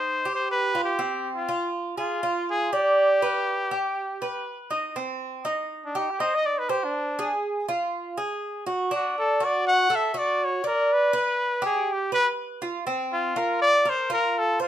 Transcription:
0.00 0.24 D#4 medium
0.00 0.34 C5 medium
0.25 0.73 G4 medium
0.35 0.49 C5 medium
0.51 0.81 B4 medium
0.75 0.99 F4 medium
0.84 1.30 G4 medium
0.99 1.47 C4 medium
1.35 1.70 F4 medium
1.49 1.97 F4 medium
1.97 2.45 F4 medium
1.97 2.22 G#4 medium
2.23 2.71 F4 medium
2.50 2.74 G#4 loud
2.73 4.46 G4 medium
2.73 3.21 D5 medium
3.22 3.70 B4 medium
3.71 4.20 G4 medium
4.22 4.70 B4 medium
4.71 4.95 D#4 medium
4.96 5.44 C4 medium
5.45 5.93 D#4 medium
5.85 5.99 D4 medium
5.95 6.12 D#4 medium
5.95 6.19 G4 medium
6.11 6.22 G4 medium
6.20 6.68 D#4 medium
6.20 6.36 C5 medium
6.35 6.47 D#5 medium
6.46 6.60 D5 medium
6.59 6.71 B4 medium
6.69 6.86 G4 medium
6.69 7.17 C5 medium
6.84 7.32 D4 medium
7.19 7.66 G#4 medium
7.68 8.16 F4 medium
8.17 8.65 G#4 medium
8.66 8.91 F#4 medium
8.91 9.39 D4 medium
8.91 9.16 F#4 medium
9.19 9.46 A4 medium
9.40 9.88 F#4 medium
9.44 9.67 D5 medium
9.68 9.97 F#5 loud
9.90 10.14 A4 medium
9.96 10.20 E5 medium
10.14 10.62 F#4 medium
10.18 10.46 D5 medium
10.44 10.66 C#5 medium
10.64 10.94 A#4 medium
10.64 11.12 D5 medium
10.93 11.65 B4 medium
11.13 11.61 B4 medium
11.62 12.10 G4 medium
11.62 11.94 G#4 medium
11.93 12.13 G4 medium
12.12 12.60 B4 medium
12.12 12.28 B4 loud
12.62 12.86 F4 medium
12.87 13.35 C4 medium
13.13 13.39 F4 medium
13.36 13.84 F4 medium
13.36 13.61 A#4 medium
13.62 13.91 D5 loud
13.85 14.09 A#4 medium
13.85 14.12 C5 medium
14.10 14.58 F4 medium
14.10 14.40 A#4 medium
14.39 14.61 A4 medium
14.60 14.68 F4 medium
14.60 14.68 C5 medium

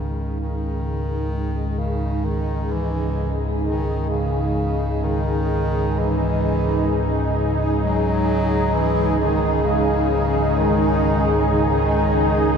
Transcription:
0.00 12.57 C#2 medium
0.00 12.57 G#2 medium
0.00 12.57 C#3 medium
0.00 0.40 D#3 medium
0.00 0.92 G#3 soft
0.00 12.57 G#3 medium
0.00 1.85 C#4 medium
0.00 12.57 D#4 medium
0.00 12.57 G#4 medium
0.40 1.80 D#3 medium
1.78 2.26 C#3 medium
2.24 2.73 D#3 medium
2.72 3.39 E3 medium
3.64 4.09 D#3 medium
4.10 5.05 C#3 medium
5.04 6.00 D#3 medium
5.98 7.37 E3 medium
7.83 8.76 F#3 medium
8.74 9.19 E3 medium
9.19 9.66 D#3 medium
9.64 10.59 C#3 medium
10.15 12.57 G#3 soft
10.58 11.50 D#3 medium
11.50 12.57 D#3 medium

